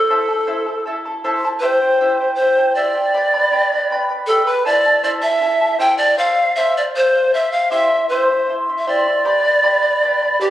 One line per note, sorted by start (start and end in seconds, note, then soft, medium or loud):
0.00 0.85 A4 medium
0.09 0.29 E4 medium
0.09 0.28 A4 medium
0.09 0.28 C5 medium
0.09 0.29 E5 medium
0.09 0.27 A5 medium
0.28 0.46 E4 soft
0.28 0.46 A4 soft
0.28 0.47 A5 medium
0.47 0.66 E4 medium
0.47 0.66 A4 medium
0.47 0.66 C5 medium
0.47 0.66 E5 medium
0.47 0.65 A5 medium
0.66 0.86 E4 soft
0.66 0.86 A4 soft
0.66 0.85 A5 soft
0.86 1.05 E4 medium
0.86 1.05 A4 medium
0.86 1.05 E5 medium
0.86 1.04 A5 medium
1.05 1.23 E4 soft
1.05 1.24 A4 soft
1.05 1.24 A5 medium
1.24 1.43 E4 medium
1.24 1.43 A4 medium
1.24 1.43 C5 medium
1.24 1.43 E5 medium
1.24 1.44 A5 medium
1.45 1.61 E4 soft
1.45 1.62 A4 medium
1.45 1.62 A5 soft
1.60 1.81 E4 medium
1.60 1.81 G4 medium
1.60 2.33 C5 medium
1.60 1.81 C5 medium
1.60 1.81 E5 medium
1.60 1.80 G5 medium
1.82 2.00 E4 soft
1.82 2.00 C5 soft
1.82 2.00 G5 medium
2.00 2.20 E4 medium
2.00 2.19 G4 medium
2.00 2.19 C5 medium
2.00 2.19 E5 medium
2.00 2.19 G5 medium
2.20 2.38 E4 soft
2.20 2.39 C5 soft
2.20 2.38 G5 soft
2.35 2.76 C5 medium
2.39 2.58 E4 soft
2.39 2.58 C5 medium
2.39 2.58 E5 medium
2.39 2.57 G5 medium
2.58 2.76 E4 soft
2.58 2.76 C5 soft
2.58 2.76 G5 medium
2.75 2.95 E4 medium
2.75 2.95 G4 medium
2.75 2.94 C5 medium
2.75 4.04 D5 medium
2.75 2.96 E5 medium
2.75 2.94 G5 medium
2.95 3.14 E4 soft
2.95 3.14 C5 soft
2.95 3.13 G5 soft
3.14 3.33 G4 medium
3.14 3.33 B4 medium
3.14 3.32 D5 medium
3.14 3.33 G5 medium
3.14 3.33 B5 medium
3.34 3.51 B4 soft
3.34 3.51 D5 soft
3.34 3.52 B5 medium
3.51 3.71 G4 medium
3.51 3.72 B4 medium
3.51 3.71 D5 medium
3.51 3.71 G5 medium
3.51 3.71 B5 medium
3.72 3.89 B4 soft
3.72 3.90 D5 medium
3.72 3.91 B5 medium
3.90 4.09 B4 medium
3.90 4.09 D5 medium
3.90 4.09 G5 medium
3.90 4.08 B5 medium
4.09 4.29 B4 soft
4.09 4.29 D5 soft
4.09 4.28 B5 medium
4.27 4.48 G4 medium
4.27 4.46 A4 medium
4.27 4.48 B4 medium
4.27 4.47 D5 medium
4.27 4.48 G5 medium
4.27 4.46 B5 medium
4.46 4.68 B4 medium
4.46 4.65 B4 soft
4.46 4.65 D5 soft
4.46 4.65 B5 medium
4.65 4.85 E4 medium
4.65 4.85 A4 medium
4.65 4.85 C5 medium
4.65 5.03 D5 loud
4.65 4.85 E5 medium
4.65 4.85 A5 medium
4.86 5.02 E4 soft
4.86 5.03 A4 soft
4.86 5.03 A5 soft
5.03 5.23 E4 medium
5.03 5.21 A4 medium
5.03 5.23 C5 medium
5.03 5.10 D5 medium
5.03 5.23 E5 medium
5.03 5.20 A5 medium
5.22 5.39 E4 soft
5.22 5.40 A4 soft
5.22 5.81 E5 loud
5.22 5.41 A5 soft
5.40 5.61 E4 medium
5.40 5.61 A4 medium
5.40 5.61 E5 medium
5.40 5.60 A5 medium
5.61 5.78 E4 soft
5.61 5.78 A4 soft
5.61 5.79 A5 medium
5.78 5.99 E4 medium
5.78 5.98 A4 medium
5.78 5.99 C5 medium
5.78 5.99 E5 medium
5.78 5.97 G5 loud
5.78 5.97 A5 medium
5.98 6.17 E4 soft
5.98 6.16 A4 soft
5.98 6.20 D5 loud
5.98 6.19 A5 soft
6.17 6.37 A4 medium
6.17 6.37 C5 medium
6.17 6.55 F5 loud
6.17 6.36 F5 medium
6.37 6.56 C5 soft
6.37 6.57 F5 medium
6.56 6.76 A4 medium
6.56 6.74 C5 medium
6.56 6.74 E5 medium
6.56 6.74 F5 medium
6.75 6.94 C5 soft
6.75 6.83 D5 medium
6.75 6.95 F5 medium
6.95 7.14 A4 medium
6.95 7.15 C5 medium
6.95 7.35 C5 loud
6.95 7.13 F5 medium
7.15 7.33 C5 soft
7.15 7.33 F5 soft
7.33 7.53 A4 medium
7.33 7.52 C5 medium
7.33 7.53 E5 medium
7.33 7.52 F5 medium
7.52 7.70 C5 soft
7.52 7.73 F5 medium
7.52 7.71 F5 soft
7.70 7.90 E4 medium
7.70 7.90 G4 medium
7.70 7.91 C5 medium
7.70 8.08 E5 loud
7.70 7.90 E5 medium
7.70 7.89 C6 medium
7.90 8.10 E4 soft
7.90 8.10 E5 soft
7.90 8.10 C6 medium
8.09 8.30 E4 medium
8.09 8.30 G4 medium
8.09 8.55 C5 medium
8.09 8.30 C5 medium
8.09 8.30 E5 medium
8.09 8.29 C6 medium
8.31 8.47 E4 soft
8.31 8.48 E5 medium
8.31 8.49 C6 soft
8.49 8.68 E4 medium
8.49 8.68 C5 medium
8.49 8.68 E5 medium
8.49 8.68 C6 medium
8.69 8.87 E4 soft
8.69 8.86 E5 soft
8.69 8.87 C6 soft
8.79 8.90 E5 medium
8.87 9.06 E4 medium
8.87 9.06 G4 medium
8.87 9.06 C5 medium
8.87 10.42 D5 loud
8.87 9.06 E5 medium
8.87 9.06 C6 medium
9.07 9.25 E4 soft
9.07 9.25 E5 soft
9.07 9.26 C6 soft
9.25 9.44 G4 medium
9.25 9.44 B4 medium
9.25 9.43 D5 medium
9.25 9.44 G5 medium
9.25 9.43 B5 medium
9.44 9.62 B4 soft
9.44 9.62 D5 soft
9.44 9.63 B5 medium
9.62 9.82 G4 medium
9.62 9.82 B4 medium
9.62 9.82 D5 medium
9.62 9.82 G5 medium
9.62 9.81 B5 medium
9.82 10.01 B4 soft
9.82 10.02 D5 medium
9.82 10.01 B5 medium
10.02 10.21 B4 medium
10.02 10.21 D5 medium
10.02 10.21 G5 medium
10.02 10.21 B5 medium
10.22 10.40 B4 soft
10.22 10.40 D5 soft
10.22 10.41 B5 medium
10.40 10.50 G4 medium
10.40 10.50 B4 medium
10.40 10.50 D5 medium
10.40 10.50 G5 medium
10.40 10.50 B5 medium